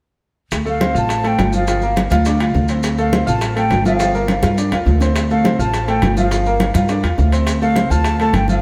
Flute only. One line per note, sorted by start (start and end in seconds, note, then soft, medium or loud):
0.69 0.95 F5 medium
0.98 1.29 A5 loud
1.27 1.55 G5 medium
1.56 2.09 F5 medium
3.00 3.26 F5 medium
3.28 3.55 A5 medium
3.58 3.84 G5 medium
3.87 4.40 F5 medium
5.31 5.58 F5 medium
5.60 5.86 A5 loud
5.89 6.15 G5 medium
6.18 6.71 F5 medium
7.62 7.92 F5 medium
7.91 8.19 A5 loud
8.21 8.37 A5 medium
8.35 8.49 G5 medium
8.50 8.62 F5 medium